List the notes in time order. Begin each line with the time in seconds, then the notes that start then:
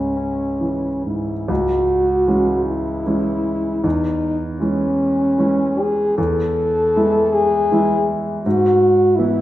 Already playing: C#2 G#2 G#3 C#4
0.16 C#4
0.61 E3
1.05 G#2 E4
1.48 C#2 F#4
2.28 E3 G#3 C#4
2.65 E4
3.06 E3 G#3 C#4
3.84 E2 D#4
4.60 E3 G#3 C#4
5.38 E3 G#3 C#4
5.80 G#4
6.18 E2 A4
6.96 E3 G#3 E4
7.34 G#4
7.72 E3 G#3 E4
8.45 G#2 F#4
9.16 E3 B3 E4